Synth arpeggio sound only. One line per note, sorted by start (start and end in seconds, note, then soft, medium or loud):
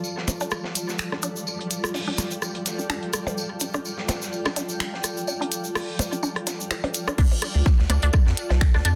0.28 0.32 D4 medium
0.41 0.46 D4 loud
1.12 1.16 D4 medium
1.23 1.29 D4 loud
1.94 1.98 D4 medium
2.08 2.12 D4 loud
2.79 2.82 D4 medium
2.90 2.96 D4 medium
3.61 3.65 D4 medium
3.74 3.79 D4 loud
4.46 4.49 D4 medium
4.56 4.62 D4 loud
5.28 5.32 D4 medium
5.41 5.46 D4 loud
6.12 6.16 D4 medium
6.23 6.29 D4 loud
6.47 6.51 D4 medium
6.71 6.73 F4 medium
6.84 6.87 D4 medium
7.08 7.11 D4 loud
7.18 7.24 D4 loud
7.90 7.94 D4 medium
8.03 8.08 D4 loud
8.74 8.78 D4 medium
8.85 8.91 D4 loud